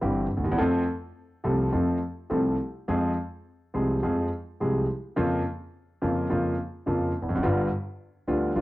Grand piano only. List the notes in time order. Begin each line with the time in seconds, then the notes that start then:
0.01 G1 G2 E3 G3 C4 G4
0.37 D2
0.44 D#2
0.51 E2
0.58 F2 F3 A3 C4 A4
1.44 C2 C3 F3 A3 C4 A4
1.72 F2 F3 A3 C4 A4
2.30 C2 C3 F3 A3 C4 A4
2.88 F2 F3 G#3 C4 G#4
3.74 C2 C3 F3 G#3 C4 G#4
4.03 F2 F3 G#3 C4 G#4
4.60 C2 C3 F3 G#3 C4 G#4
5.16 F2 C#3 F3 A#3 F4
6.02 F2 C#3 F3 A#3 F4
6.30 F2 C#3 F3 A#3 F4
6.86 F2 C#3 F3 A#3 F4
7.22 E2
7.29 F2
7.35 F#2
7.43 G1 G2 D3 G3 B3 F4
8.27 D2 D3 G3 B3 F4
8.55 G1 G2 D3 G3 B3 F4